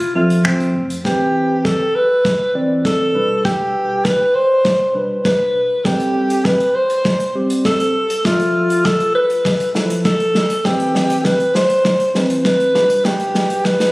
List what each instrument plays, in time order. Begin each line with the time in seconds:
Already playing: alto saxophone F4
0.00 closed hi-hat
0.15 analog synth bass F2, tine electric piano F3 A4 E5, alto saxophone F4
0.30 closed hi-hat
0.45 alto saxophone C4, finger snap, kick
0.60 closed hi-hat
0.75 analog synth bass F1
0.90 closed hi-hat
1.05 tine electric piano E3 C4 B4, alto saxophone G4, kick, snare
1.65 alto saxophone A4, kick, snare
1.96 alto saxophone B4
2.25 kick, snare
2.55 tine electric piano E3 C4 D5
2.85 alto saxophone A4, kick, snare
3.15 tine electric piano B2 G3 D4 B4
3.45 alto saxophone G4, kick, snare
4.05 alto saxophone B4, kick, snare
4.35 alto saxophone C5
4.65 kick, snare
4.95 tine electric piano B2 G3 D4 B4
5.25 alto saxophone B4, kick, snare
5.85 tine electric piano G3 C4 A4, alto saxophone G4, kick, snare
6.00 closed hi-hat
6.30 closed hi-hat
6.45 alto saxophone B4, kick, snare
6.60 closed hi-hat
6.75 alto saxophone C5
6.90 closed hi-hat
7.05 kick, snare
7.20 closed hi-hat
7.35 tine electric piano G3 C4 G4
7.50 closed hi-hat
7.65 alto saxophone A4, kick, snare
7.80 closed hi-hat
8.10 closed hi-hat
8.25 tine electric piano F3 A4 E5, alto saxophone F4, kick, snare
8.40 closed hi-hat
8.70 closed hi-hat
8.85 alto saxophone A4, kick, snare
9.00 closed hi-hat
9.15 alto saxophone B4
9.30 closed hi-hat
9.45 kick, snare
9.60 closed hi-hat
9.75 tine electric piano F3 E4 A4, snare
9.90 closed hi-hat
10.05 alto saxophone A4, kick, snare
10.20 closed hi-hat
10.35 snare
10.50 closed hi-hat
10.65 tine electric piano E3 C4 B4, alto saxophone G4, kick, snare
10.80 closed hi-hat
10.95 snare
11.10 closed hi-hat
11.25 alto saxophone B4, kick, snare
11.40 closed hi-hat
11.55 alto saxophone C5, snare
11.70 closed hi-hat
11.85 kick, snare
12.00 closed hi-hat
12.15 tine electric piano E3 C4 B4, snare
12.30 closed hi-hat
12.45 alto saxophone B4, kick, snare
12.60 closed hi-hat
12.75 tine electric piano B2 G3 D4 B4, snare
12.90 closed hi-hat
13.05 alto saxophone G4, kick, snare
13.20 closed hi-hat
13.35 snare
13.50 closed hi-hat
13.65 alto saxophone B4, kick, snare
13.80 snare, closed hi-hat